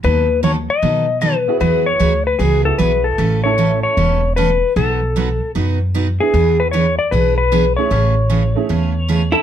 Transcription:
X:1
M:4/4
L:1/8
Q:"Swing" 1/4=152
K:A
V:1 name="Electric slide guitar"
B2 c ^d3 B2 | B c2 B G A B A- | A c2 c3 B2 | A4 z3 G- |
G B c d B B2 c- | c6- c A |]
V:2 name="Hollow-body jazz guitar"
z8 | z8 | z8 | z8 |
z8 | z6 z E |]
V:3 name="Honky-tonk piano"
z6 z [B,EFG]- | [B,EFG]2 z3 [B,EFG]3 | z [A,CEA]3 z4 | z6 z [B,DEG] |
z6 z [A,CEG] | z3 [A,CEG] z4 |]
V:4 name="Steel-string acoustic guitar"
[^D,F,B,^DA] z [D,F,B,DA] z [D,F,B,DA] z [D,F,B,DA] z | [E,F,B,FG] z [E,F,B,FG] z [E,F,B,FG] z [E,F,B,FG] z | [C,E,A,CA] z [C,E,A,CA] z [C,E,A,CA] z [C,E,A,CA] z | [B,,F,B,^DF] z [B,,F,B,DF] z [B,,F,B,DF] z [B,,F,B,DF] z |
[E,B,DG] z [E,B,DG] z [E,B,DG] z [E,B,DG] z | [C,E,A,CG] z [C,E,A,CG] z [C,E,A,CG] z [C,E,A,CG] z |]
V:5 name="Upright bass" clef=bass
^D,,4 B,,4 | E,,2 D,,2 C,,2 B,,,2 | A,,,4 E,,,4 | B,,,4 F,,4 |
E,,4 B,,,4 | A,,,4 E,,4 |]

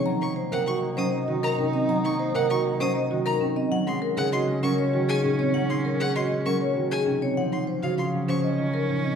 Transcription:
X:1
M:6/4
L:1/8
Q:1/4=197
K:Gblyd
V:1 name="Violin"
z d' z g d' z e' z2 b z2 | z d' z g d' z e' z2 b z2 | z c' z g c' z d' z2 a z2 | z c' z g c' z d' z2 a z2 |
z c' z f c' z d' z4 z |]
V:2 name="Vibraphone"
b z c z g z c e z B z e | b z c z g z c e z B z e | g z B z e z B d z A z d | g z B z e z B d z A z d |
g z c z f z c e z B z e |]
V:3 name="Marimba"
z E z B G z D z G z D C | z E z B G z D z G z D C | z E z A G z D z G z D C | z E z A G z D z G z D C |
z E z G F z D z F z D C |]
V:4 name="Soprano saxophone"
E12- | E8- E3 z | D12- | D8- D3 z |
D12 |]
V:5 name="Harp" clef=bass
G, B,2 C,2 B, G,2 E,2 C,2 | G, B,2 C,2 B, G,2 E,2 C,2 | G, A,2 D,2 A, G,2 E,2 B,,2 | G, A,4 A, G,2 E,2 C,2 |
F,3 D,2 G, F,2 E,2 B,,2 |]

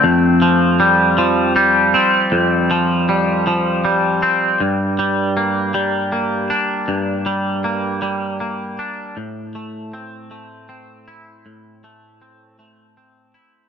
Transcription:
X:1
M:6/8
L:1/8
Q:3/8=53
K:Gdor
V:1 name="Clean electric guitar" clef=bass
F,, F, G, F, G, C | F,, F, G, F, G, C | G,, G, B, G, B, D | G,, G, B, G, B, D |
A,, A, C A, C E | A,, A, C A, C E |]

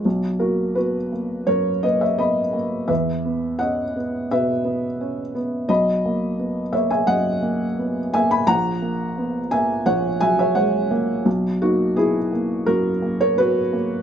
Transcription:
X:1
M:4/4
L:1/16
Q:1/4=85
K:B
V:1 name="Felt piano"
z2 [FA]2 [FB]4 [Ac]2 [Bd] [ce] [db]4 | [Be]4 [df]4 [Be]6 z2 | [db]6 [ce] [eg] [df]6 [eg] [gb] | [fa]6 [eg]2 [cf]2 [eg] [ce] [cf]4 |
z2 [DF]2 [EG]4 [FA]3 [Ac] [FB]4 |]
V:2 name="Felt piano"
B,,,2 A,2 B,2 A,2 F,,2 A,2 B,2 A,2 | E,,2 B,2 C2 B,2 B,,2 B,2 C2 B,2 | B,,,2 A,2 B,2 A,2 F,,2 A,2 B,2 A,2 | A,,,2 A,2 B,2 A,2 A,,,2 F,2 G,2 A,2 |
B,,,2 A,2 B,2 A,2 F,,2 A,2 B,2 A,2 |]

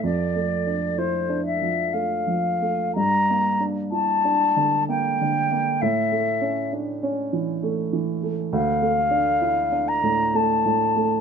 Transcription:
X:1
M:3/4
L:1/8
Q:1/4=64
K:Dm
V:1 name="Flute"
d2 c e f2 | b z a2 g2 | e2 z4 | f3 b a2 |]
V:2 name="Grand piano"
(3F,, A, D (3E D F, (3A, F, A, | (3G,, B, D (3E D D, (3B, D, B, | (3A,, A, ^C (3D C E, (3A, E, A, | (3D,, A, D (3E D A,, (3A, A,, A, |]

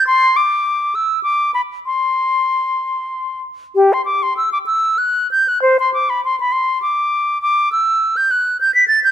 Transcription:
X:1
M:6/8
L:1/16
Q:3/8=66
K:C
V:1 name="Flute"
c'2 d'4 e'2 d'2 b2 | c'8- c'2 z2 | [K:Dmix] G c' d' c' e' d' e'2 f'2 g' f' | c c' d' b c' b c'2 d'4 |
d'2 e'3 g' f'2 g' b' a' g' |]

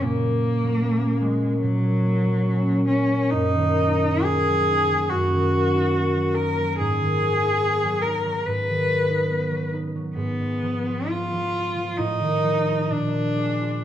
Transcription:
X:1
M:4/4
L:1/16
Q:1/4=71
K:F#
V:1 name="Cello"
A,6 G,2 F,6 C2 | [K:Ebm] E4 A4 G6 B2 | A6 B2 c6 z2 | C4 F4 E4 =D4 |]
V:2 name="Harp" clef=bass
[A,,F,A,C] F, A, F, C A, F, A, A,, F, A, F, C A, F, A, | [K:Ebm] G,, E, G, E B, G, E G, G,, E, G, E B, G, E G, | A,, E, G, E C G, E G, A,, E, G, E C G, E G, | A,, A, F, F C F, F F, =A,, E, F, F B,, F, _A, F |]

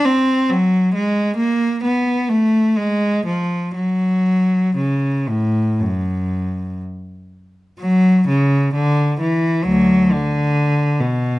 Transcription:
X:1
M:4/4
L:1/8
Q:1/4=64
K:F#m
V:1 name="Cello" clef=bass
^B, F, G, ^A, =B, =A, G, ^E, | F,2 C, A,, F,,2 z2 | F, C, D, E, [D,,F,] D,2 B,, |]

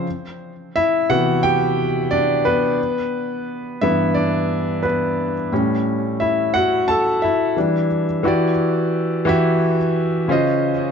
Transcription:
X:1
M:4/4
L:1/16
Q:"Swing 16ths" 1/4=88
K:Em
V:1 name="Grand piano"
z4 [Ee]2 [Ff]2 [Gg]4 [Dd]2 [B,B]2- | [B,B]6 [Ee]2 [Dd]4 [B,B]3 z | z4 [Ee]2 [Ff]2 [Aa]2 [Ee]4 z2 | [E,EFGd]2 z4 [E,EFGe]2 z4 [^C,^C^E^B^d]2 z2 |]
V:2 name="Grand piano" clef=bass
z6 [C,E,B,]6 z4 | z6 [G,,E,B,]6 z4 | [A,,G,^C]12 [E,G,D]2 z2 | z16 |]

